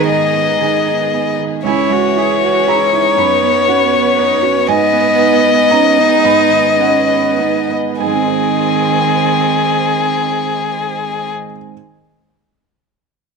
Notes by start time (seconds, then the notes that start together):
Already playing: G#2 D#3 B3 D#4 G#4 D#5 A#5 B5
0.07 G#2 D#5 A#5
0.35 B3
0.60 D#3 G#4 G#5
0.87 D#4
1.14 B3
1.39 D#3
1.64 C#2 E3 C#4 E4 G#4 C#5 E5 G#5
1.90 G#3 F#4
2.17 E4 G#4
2.41 F#4 C#5
2.67 E4 G#4 A#5
2.93 D#4 E4
3.17 F#2 B3 B4 C#5 B5
3.43 B3
3.68 C#4 F#4 F#5
3.92 B3 C#5
4.17 D#4 B4
4.42 C#4 F#4
4.67 G#2 B3 G#4 D#5 G#5
4.92 B3
5.19 D#4
5.45 B4
5.71 C#4 D#4 A#5
5.98 B3 D#4
6.24 G#2 B5
6.51 D#3
6.79 C#4 D#4 F#5
7.08 B4
7.38 B3 D#4
7.69 B3
8.00 G#2 D#3 C4 G#4 D#5 G#5
8.07 G#3
8.14 C4
8.21 D#4
8.28 C5